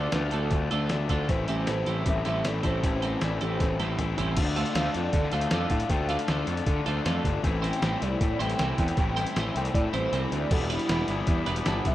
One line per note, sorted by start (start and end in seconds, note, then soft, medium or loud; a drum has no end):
0.00 0.12 D3 medium
0.00 0.13 A3 soft
0.00 0.13 D4 soft
0.00 0.14 F4 medium
0.00 0.19 A4 medium
0.00 0.14 D5 loud
0.12 0.29 D2 medium
0.12 0.89 D3 medium
0.12 0.72 A3 medium
0.12 0.70 D4 medium
0.12 0.69 F4 medium
0.12 0.32 B4 medium
0.12 snare loud
0.12 closed hi-hat medium
0.31 0.48 D2 medium
0.31 0.58 A3 medium
0.31 0.58 D4 medium
0.31 0.58 F4 medium
0.31 0.58 A4 medium
0.31 0.69 A4 medium
0.31 closed hi-hat medium
0.51 0.68 D2 medium
0.51 kick loud
0.51 closed hi-hat medium
0.70 0.87 D2 medium
0.70 0.90 A3 medium
0.70 0.90 D4 medium
0.70 0.91 F4 medium
0.70 0.96 A4 loud
0.70 closed hi-hat medium
0.89 1.07 D2 medium
0.89 1.28 D3 medium
0.89 1.10 A3 medium
0.89 1.09 D4 medium
0.89 1.07 F4 medium
0.89 snare loud
0.89 closed hi-hat medium
1.09 1.25 D2 medium
1.09 1.30 A3 medium
1.09 1.28 D4 medium
1.09 1.27 F4 medium
1.09 1.29 A4 medium
1.09 kick medium
1.09 snare soft
1.09 closed hi-hat medium
1.28 1.45 A1 medium
1.28 1.66 A2 medium
1.28 1.67 E3 medium
1.28 1.49 A3 medium
1.28 1.48 C4 medium
1.28 1.47 E4 medium
1.28 2.02 C5 loud
1.28 kick medium
1.28 closed hi-hat medium
1.47 1.64 A1 medium
1.47 1.74 G3 medium
1.47 1.67 A3 soft
1.47 1.68 C4 medium
1.47 1.68 E4 medium
1.47 1.73 A4 medium
1.47 closed hi-hat medium
1.66 1.83 A1 medium
1.66 2.44 A2 medium
1.66 2.43 E3 medium
1.66 2.27 A3 medium
1.66 2.25 C4 medium
1.66 2.24 E4 medium
1.66 snare loud
1.66 closed hi-hat medium
1.86 2.02 A1 medium
1.86 2.13 G3 medium
1.86 2.12 C4 medium
1.86 2.12 E4 medium
1.86 2.12 A4 medium
1.86 closed hi-hat medium
2.06 2.22 A1 medium
2.06 2.26 E5 loud
2.06 kick loud
2.06 closed hi-hat loud
2.25 2.41 A1 medium
2.25 2.51 G3 medium
2.25 2.44 A3 medium
2.25 2.44 C4 medium
2.25 2.45 E4 medium
2.25 2.50 A4 loud
2.25 2.49 E5 loud
2.25 closed hi-hat medium
2.44 2.61 A1 medium
2.44 2.82 E3 medium
2.44 2.65 A3 medium
2.44 2.63 C4 medium
2.44 2.62 E4 medium
2.44 2.66 D5 loud
2.44 snare loud
2.44 closed hi-hat medium
2.63 2.80 A1 medium
2.63 2.89 G3 medium
2.63 2.82 A3 medium
2.63 2.83 C4 medium
2.63 2.83 E4 medium
2.63 2.89 A4 medium
2.63 3.26 C5 medium
2.63 kick medium
2.63 closed hi-hat medium
2.82 3.15 A1 medium
2.82 3.19 A2 medium
2.82 3.20 E3 medium
2.82 3.03 A3 medium
2.82 3.02 C4 medium
2.82 3.00 E4 loud
2.82 kick loud
2.82 closed hi-hat medium
3.02 3.28 G3 medium
3.02 3.21 A3 medium
3.02 3.21 C4 medium
3.02 3.22 E4 medium
3.02 3.27 A4 medium
3.02 closed hi-hat medium
3.20 3.38 A1 medium
3.20 3.98 A2 medium
3.20 3.97 E3 medium
3.20 3.80 A3 loud
3.20 3.79 C4 loud
3.20 3.78 E4 loud
3.20 3.42 D5 medium
3.20 snare loud
3.20 closed hi-hat medium
3.41 3.57 A1 medium
3.41 3.67 G3 medium
3.41 3.66 C4 medium
3.41 3.66 E4 medium
3.41 3.66 A4 medium
3.41 3.78 C5 medium
3.41 closed hi-hat medium
3.60 3.76 A1 medium
3.60 kick loud
3.60 snare medium
3.60 closed hi-hat medium
3.79 3.96 A1 medium
3.79 4.05 G3 medium
3.79 3.98 A3 medium
3.79 3.98 C4 medium
3.79 3.99 E4 medium
3.79 4.04 A4 medium
3.79 closed hi-hat medium
3.79 high tom medium
3.98 4.15 A1 medium
3.98 4.36 E3 medium
3.98 4.19 A3 medium
3.98 4.17 C4 medium
3.98 4.16 E4 medium
3.98 closed hi-hat medium
3.98 mid tom medium
4.17 4.34 A1 medium
4.17 4.38 G3 medium
4.17 4.36 A3 medium
4.17 4.36 C4 medium
4.17 4.36 E4 medium
4.17 4.37 A4 medium
4.17 closed hi-hat medium
4.17 floor tom medium
4.36 4.63 D2 loud
4.36 4.74 D3 medium
4.36 4.58 A3 medium
4.36 4.57 D4 medium
4.36 4.55 F4 loud
4.36 kick loud
4.36 closed hi-hat medium
4.36 crash loud
4.55 4.75 A3 medium
4.55 4.76 D4 medium
4.55 4.76 F4 medium
4.55 4.75 A4 medium
4.55 4.94 F5 medium
4.55 closed hi-hat medium
4.66 closed hi-hat medium
4.74 4.88 D2 medium
4.74 5.50 D3 medium
4.74 4.96 A3 medium
4.74 4.95 D4 medium
4.74 4.93 F4 medium
4.74 5.01 A4 medium
4.74 snare loud
4.74 closed hi-hat medium
4.94 5.08 F2 medium
4.94 5.34 A3 medium
4.94 5.32 D4 medium
4.94 5.31 F4 medium
4.94 5.32 D5 medium
4.94 closed hi-hat medium
5.13 5.27 D3 medium
5.13 kick loud
5.13 closed hi-hat medium
5.23 snare soft
5.32 5.46 D2 medium
5.32 5.52 A3 medium
5.32 5.51 D4 medium
5.32 5.52 F4 medium
5.32 5.52 A4 medium
5.32 5.70 F5 medium
5.32 closed hi-hat medium
5.41 closed hi-hat medium
5.51 5.65 F2 medium
5.51 5.89 D3 medium
5.51 5.90 A3 medium
5.51 5.91 D4 medium
5.51 5.91 F4 medium
5.51 5.78 A4 medium
5.51 snare loud
5.51 closed hi-hat medium
5.70 5.84 A2 loud
5.70 5.90 F5 medium
5.70 kick medium
5.70 closed hi-hat medium
5.80 closed hi-hat medium
5.90 6.16 D2 loud
5.90 6.26 D3 medium
5.90 6.11 A3 medium
5.90 6.09 D4 medium
5.90 6.08 F4 loud
5.90 6.08 G5 medium
5.90 kick loud
5.90 closed hi-hat medium
6.08 6.28 A3 medium
6.08 6.28 D4 medium
6.08 6.28 F4 medium
6.08 6.29 A4 medium
6.08 6.28 F5 medium
6.08 closed hi-hat medium
6.19 closed hi-hat medium
6.27 6.42 D2 medium
6.27 6.66 D3 medium
6.27 6.49 A3 medium
6.27 6.47 D4 medium
6.27 6.46 F4 medium
6.27 6.54 A4 medium
6.27 snare loud
6.27 closed hi-hat medium
6.47 6.61 F2 medium
6.47 6.87 A3 medium
6.47 6.85 D4 medium
6.47 6.84 F4 medium
6.47 closed hi-hat medium
6.57 closed hi-hat medium
6.66 6.80 D3 medium
6.66 kick loud
6.66 closed hi-hat medium
6.86 6.99 D2 loud
6.86 7.05 A3 medium
6.86 7.05 D4 medium
6.86 7.06 F4 medium
6.86 7.05 A4 loud
6.86 closed hi-hat medium
7.05 7.19 F2 loud
7.05 7.42 D3 medium
7.05 7.44 A3 medium
7.05 7.43 D4 medium
7.05 7.43 F4 medium
7.05 7.31 A4 medium
7.05 snare loud
7.05 closed hi-hat medium
7.24 7.37 G1 medium
7.24 kick medium
7.24 closed hi-hat medium
7.43 7.70 A1 loud
7.43 7.81 A2 medium
7.43 7.81 E3 medium
7.43 7.64 A3 medium
7.43 7.63 C4 loud
7.43 7.62 E4 medium
7.43 kick loud
7.43 closed hi-hat medium
7.62 7.80 G3 medium
7.62 7.82 A3 medium
7.62 7.82 C4 medium
7.62 7.83 E4 medium
7.62 7.82 C5 medium
7.62 8.01 G5 medium
7.62 closed hi-hat medium
7.73 closed hi-hat medium
7.81 7.95 A1 medium
7.81 8.97 A2 medium
7.81 8.58 E3 loud
7.81 8.07 G3 medium
7.81 8.01 A3 loud
7.81 8.01 C4 loud
7.81 7.99 E4 loud
7.81 8.07 C5 medium
7.81 snare loud
7.81 closed hi-hat medium
8.00 8.15 C2 medium
8.00 8.40 A3 medium
8.00 8.39 C4 medium
8.00 8.39 E4 medium
8.00 8.39 D5 medium
8.00 closed hi-hat medium
8.21 8.34 A2 medium
8.21 kick loud
8.21 closed hi-hat medium
8.39 8.53 A1 medium
8.39 8.57 G3 medium
8.39 8.58 A3 medium
8.39 8.59 C4 medium
8.39 8.60 E4 medium
8.39 8.58 C5 medium
8.39 8.78 G5 loud
8.39 closed hi-hat medium
8.50 closed hi-hat medium
8.58 8.72 C2 medium
8.58 8.97 E3 medium
8.58 8.84 G3 medium
8.58 8.97 A3 medium
8.58 8.98 C4 medium
8.58 8.99 E4 medium
8.58 8.84 C5 medium
8.58 snare loud
8.58 closed hi-hat medium
8.78 8.91 E2 medium
8.78 8.97 G5 medium
8.78 kick medium
8.78 closed hi-hat medium
8.88 closed hi-hat medium
8.97 9.24 A1 loud
8.97 9.34 A2 loud
8.97 9.36 E3 loud
8.97 9.18 A3 medium
8.97 9.17 C4 loud
8.97 9.16 E4 loud
8.97 9.17 G5 medium
8.97 kick loud
8.97 closed hi-hat medium
9.16 9.34 G3 medium
9.16 9.36 A3 soft
9.16 9.36 C4 medium
9.16 9.37 E4 medium
9.16 9.36 C5 loud
9.16 9.36 G5 medium
9.16 closed hi-hat medium
9.27 closed hi-hat medium
9.36 9.49 A1 medium
9.36 9.74 A2 medium
9.36 10.11 E3 medium
9.36 9.61 G3 medium
9.36 9.55 A3 medium
9.36 9.55 C4 medium
9.36 9.54 E4 medium
9.36 9.61 C5 medium
9.36 snare loud
9.36 closed hi-hat medium
9.55 9.68 C2 medium
9.55 9.94 A3 medium
9.55 9.93 C4 medium
9.55 9.93 E4 medium
9.55 9.74 G5 medium
9.55 closed hi-hat medium
9.65 closed hi-hat medium
9.74 9.87 A2 medium
9.74 9.93 D5 medium
9.74 kick loud
9.74 closed hi-hat medium
9.93 10.06 A1 medium
9.93 10.11 G3 medium
9.93 10.11 A3 medium
9.93 10.12 C4 medium
9.93 10.14 E4 medium
9.93 10.12 C5 medium
9.93 10.31 C5 medium
9.93 closed hi-hat medium
10.12 10.25 C2 medium
10.12 10.50 E3 medium
10.12 10.37 G3 medium
10.12 10.50 A3 medium
10.12 10.50 C4 medium
10.12 10.52 E4 medium
10.12 10.38 C5 medium
10.12 closed hi-hat medium
10.32 10.45 D2 medium
10.32 10.51 D5 medium
10.32 closed hi-hat medium
10.50 10.77 E1 medium
10.50 10.88 E3 medium
10.50 11.95 E3 medium
10.50 10.72 G3 medium
10.50 10.70 B3 medium
10.50 11.95 D4 medium
10.50 10.69 E4 medium
10.50 11.95 G4 medium
10.50 10.70 A4 medium
10.50 11.95 B4 medium
10.50 kick loud
10.50 crash medium
10.70 10.89 G3 medium
10.70 10.90 B3 medium
10.70 10.88 D4 medium
10.70 10.91 E4 medium
10.70 11.45 E4 loud
10.70 10.89 B4 loud
10.70 closed hi-hat medium
10.79 closed hi-hat medium
10.88 11.03 E1 medium
10.88 11.66 E3 medium
10.88 11.11 G3 medium
10.88 11.08 B3 loud
10.88 11.14 D4 medium
10.88 11.08 E4 medium
10.88 11.15 B4 medium
10.88 snare loud
10.88 closed hi-hat medium
11.08 11.21 G1 medium
11.08 11.48 G3 medium
11.08 11.47 B3 medium
11.08 11.46 E4 medium
11.08 closed hi-hat medium
11.27 11.41 E2 medium
11.27 kick loud
11.27 closed hi-hat medium
11.46 11.60 E1 medium
11.46 11.66 G3 medium
11.46 11.67 B3 medium
11.46 11.66 D4 medium
11.46 11.68 E4 medium
11.46 11.66 B4 loud
11.46 closed hi-hat medium
11.56 closed hi-hat medium
11.66 11.80 G1 medium
11.66 11.95 E3 medium
11.66 11.95 G3 medium
11.66 11.95 B3 medium
11.66 11.91 D4 medium
11.66 11.95 E4 medium
11.66 11.92 B4 medium
11.66 11.85 A5 loud
11.66 snare loud
11.66 closed hi-hat medium
11.85 11.95 B1 medium
11.85 11.95 E5 loud
11.85 kick medium
11.85 closed hi-hat medium